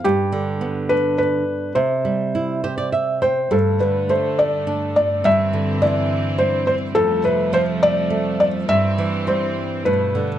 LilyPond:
<<
  \new Staff \with { instrumentName = "Felt piano" } { \time 3/4 \key c \major \tempo 4 = 104 g'4. b'8 b'4 | c''2 r8 c''8 | a'8 b'8 c''8 d''4 d''8 | e''4 d''4 c''8 c''8 |
a'8 b'8 c''8 d''4 d''8 | e''4 c''4 b'8. r16 | }
  \new Staff \with { instrumentName = "Nylon-string guitar" } { \clef bass \time 3/4 \key c \major << { r2. | r4. c''16 d''16 e''8 g''8 | r2. | r2. |
r2. | r2. | } \\ { g,8 d8 b8 d'4. | c8 g8 e'8 g'4. | g,8 d8 a4 d'4 | g,8 d8 e4 g4 |
f,8 c8 f4 a4 | g,8 e8 g4 g,8 d8 | } >> }
  \new Staff \with { instrumentName = "String section" } { \clef bass \time 3/4 \key c \major << { r2. | r2. | <g, a>2. | <d c'>2. |
<f a>2. | <g, e c'>2 <b, a>4 | } \\ { r2. | r2. | d2. | e2. |
g2.~ | g2. | } >> }
>>